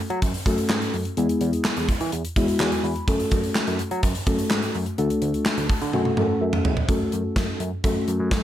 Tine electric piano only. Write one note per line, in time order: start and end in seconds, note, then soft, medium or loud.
0.10 0.19 F#3 loud
0.22 0.31 F#2 loud
0.46 0.55 F#2 loud
0.70 0.79 G#2 loud
0.93 1.02 F#2 medium
1.17 1.26 E2 loud
1.41 1.50 E2 loud
1.77 1.86 E2 loud
2.01 2.10 E3 loud
2.12 2.21 E2 loud
2.36 2.45 E2 loud
2.60 2.69 E2 loud
2.84 2.93 E2 loud
3.08 3.17 F#2 loud
3.32 3.41 F#2 loud
3.67 3.76 F#2 loud
3.91 4.00 F#3 loud
4.03 4.12 F#2 loud
4.27 4.36 F#2 loud
4.51 4.60 G#2 loud
4.74 4.83 F#2 medium
4.98 5.07 D2 loud
5.22 5.31 D2 loud
5.58 5.67 D2 loud
5.82 5.91 D3 loud
5.93 6.03 F#2 loud
6.17 6.26 F#2 medium
6.41 6.50 F#2 loud
6.65 6.74 E2 loud
6.89 6.98 F#2 loud
7.13 7.22 F#2 medium
7.36 7.45 F#2 loud
7.60 7.69 F#2 loud
7.84 7.93 F#2 loud
8.08 8.17 F#2 loud
8.20 8.29 F#2 loud